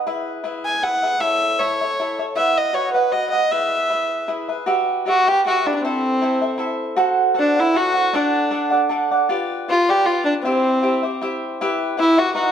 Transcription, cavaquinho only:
0.07 E4 G#4 B4 E5
0.44 E4 G#4 B4 E5
0.83 E4 G#4 B4 E5
1.03 G#4 B4 E5
1.20 E4 A4 C#5 E5
1.60 E4 A4 C#5 E5
1.81 A4 C#5 E5
2.00 E4 A4 C#5 E5
2.19 A4 C#5 E5
2.36 E4 B4 E5 F#5
2.73 F#4 B4 D#5 F#5
2.95 B4 D#5 F#5
3.12 F#4 B4 D#5 F#5
3.32 B4 D#5 F#5
3.52 E4 G#4 B4 E5
3.90 E4 G#4 B4 E5
4.28 E4 G#4 B4 E5
4.48 G#4 B4 E5
4.66 F#4 G4 B4 E5
5.06 F#4 G4 B4 E5
5.27 G4 B4 E5
5.46 F#4 G4 B4 E5
5.66 G4 B4 E5
5.84 E4 A4 C5 E5
6.22 E4 A4 C5 E5
6.42 A4 C5 E5
6.58 E4 A4 C5 E5
6.96 F#4 A4 C5 F#5
7.34 F#4 A4 C5 F#5
7.56 A4 C5 F#5
7.74 F#4 A4 C5 F#5
7.94 A4 C5 F#5
8.13 D4 A4 D5 F#5
8.51 D4 A4 D5 F#5
8.70 A4 D5 F#5
8.89 D4 A4 D5 F#5
9.11 A4 D5 F#5
9.29 F4 G4 B4 D5
9.68 F4 G4 B4 D5
9.89 G4 B4 D5
10.06 F4 G4 B4 D5
10.45 E4 G4 C5 E5
10.83 E4 G4 C5 E5
11.03 G4 C5 E5
11.21 E4 G4 C5 E5
11.61 E4 G4 B4 E5
11.97 E4 G4 B4 E5
12.18 G4 B4 E5
12.34 D#4 B4 D#5 F#5

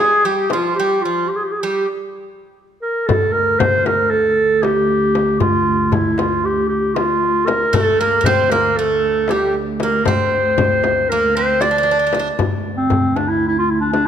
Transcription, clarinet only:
0.00 G#4
0.24 G4
0.51 F4
0.75 G4
1.02 F4
1.28 G4
1.36 G#4
1.43 G4
1.52 G#4
1.60 G4
2.82 A#4
3.07 A4
3.32 A#4
3.59 C5
3.86 A#4
4.10 A4
4.63 G4
5.40 F4
5.93 E4
6.19 F4
6.45 G4
6.69 G4
6.95 F4
7.46 A#4
7.74 A4
8.00 A#4
8.25 C5
8.51 A#4
8.77 A4
9.30 G4
9.81 A#4
10.05 C5
11.09 A#4
11.35 C5
11.61 D5
12.77 C4
13.16 D4
13.28 E4
13.48 E4
13.59 F4
13.70 E4
13.80 D4
13.93 D4

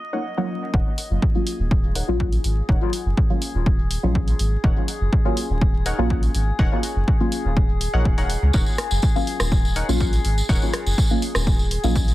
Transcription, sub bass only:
0.74 D#1
1.10 F#1
1.59 D#1
2.08 A#1
2.44 G#1
2.69 D#1
3.06 F#1
3.54 D#1
4.03 A#1
4.39 G#1
4.64 D#1
5.01 F#1
5.50 D#1
5.98 A#1
6.35 G#1
6.59 D#1
6.96 F#1
7.45 D#1
7.94 A#1
8.42 C#2
8.54 D#1
8.91 F#1
9.40 D#1
9.89 A#1
10.25 G#1
10.49 D#1
10.86 F#1
11.35 D#1
11.84 A#1

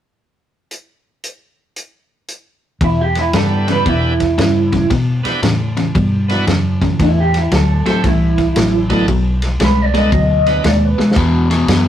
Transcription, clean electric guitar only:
2.84 E4
3.01 G4
3.19 E4
3.37 A4
3.72 B4
3.89 E4
7.02 E4
7.20 G4
7.38 E4
7.55 A4
7.90 A4
8.07 E4
9.64 B4
9.82 D5
9.99 D#5
10.69 D5
10.85 B4

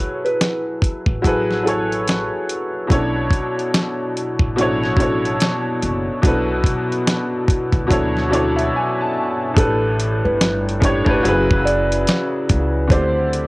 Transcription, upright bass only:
1.07 A1
2.91 B1
4.40 A1
5.83 F#1
6.24 B1
7.73 D2
9.57 A1
10.25 G1
11.07 G1
11.24 F#1
12.50 C#2
12.91 D2

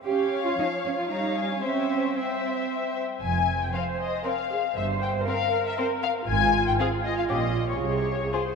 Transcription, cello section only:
0.08 G4
0.46 F4
0.59 D#4
0.85 C#4
0.98 F4
1.10 D#4
1.50 C#4
1.63 C#4
2.16 C4
3.21 F2
4.77 G2
6.28 G#2
7.30 A#2
7.81 C3

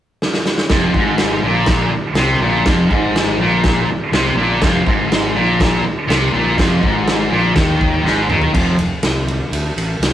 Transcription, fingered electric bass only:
0.69 F1
0.93 G#1
1.42 A#1
1.91 muted fingered electric bass stroke
2.14 C2
2.39 A#1
2.65 F1
2.90 G#1
3.38 A#1
3.88 muted fingered electric bass stroke
4.12 C2
4.34 A#1
4.61 F1
4.86 G#1
5.35 A#1
5.84 muted fingered electric bass stroke
6.08 C2
6.33 A#1
6.57 F1
6.82 G#1
7.31 A#1
7.56 D#2
8.03 G#1
8.28 D#2
8.53 F1
9.02 C2
9.51 D2
9.76 A1
9.99 C2

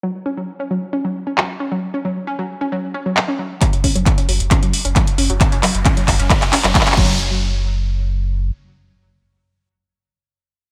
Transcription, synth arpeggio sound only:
0.03 F#3
0.26 C#4
0.37 F#3
0.60 C#4
0.71 F#3
0.93 C#4
1.05 F#3
1.27 C#4
1.38 F#3
1.60 C#4
1.72 F#3
1.94 C#4
2.05 F#3
2.27 C#4
2.39 F#3
2.61 C#4
2.72 F#3
2.94 C#4
3.06 F#3
3.28 C#4
3.39 F#3
3.62 F#3
3.84 C#4
3.95 F#3
4.18 C#4
4.29 F#3
4.51 C#4
4.63 F#3
4.85 C#4
4.96 F#3
5.18 C#4
5.30 F#3
5.52 C#4
5.63 F#3
5.86 C#4
5.97 F#3
6.19 C#4
6.30 F#3
6.53 C#4
6.64 F#3
6.86 C#4
6.97 F#3

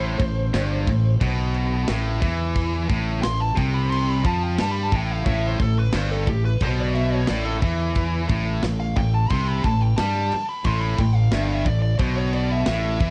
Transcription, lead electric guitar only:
Already playing: C5
3.23 C6
3.40 A5
3.58 G5
3.74 B5
3.90 C6
4.09 B5
4.26 A5
4.43 G5
4.60 A5
4.71 B5
4.83 A5
4.96 G5
5.11 F5
5.29 E5
5.47 C5
5.62 A4
5.79 B4
5.96 C5
6.11 A4
6.29 G4
6.45 B4
6.63 C5
6.80 D5
6.95 E5
7.14 C#5
7.29 D5
7.45 A4
8.80 F5
8.97 G5
9.14 A5
9.30 C6
9.47 B5
9.64 A5
9.81 G5
9.96 A5
10.49 B5
10.65 C6
10.81 B5
10.99 G5
11.15 F5
11.33 E5
11.44 F5
11.54 E5
11.65 D5
11.82 D5
11.99 C5
12.17 C#5
12.34 D5
12.51 E5

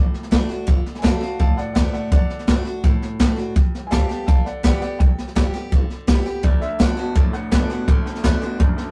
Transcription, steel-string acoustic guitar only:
Already playing: A2
0.31 D3 A3 D4 F#4
0.49 D4 F#4
0.67 D3
1.02 D3 A3 D4 F#4
1.21 D4 F#4
1.40 A2
1.75 D3 A3 D4 F#4
2.12 D3
2.47 D3 A3 D4 F#4
2.65 D4 F#4
2.84 A2
3.20 D3 A3 D4 F#4
3.36 D4 F#4
3.56 G2
3.91 D3 G3 B3 G4
4.09 B3 G4
4.28 D3
4.63 D3 G3 B3 G4
4.82 B3 G4
5.01 G2
5.35 D3 G3 B3 G4
5.54 B3 G4
5.72 D3
6.07 D3 G3 B3 G4
6.26 B3 G4
6.43 D3
6.79 D3 A3 D4 F#4
6.97 D4 F#4
7.15 A2
7.51 D3 A3 D4 F#4
7.70 D4 F#4
7.88 D3
8.24 D3 A3 D4 F#4
8.42 D4 F#4
8.60 F#2

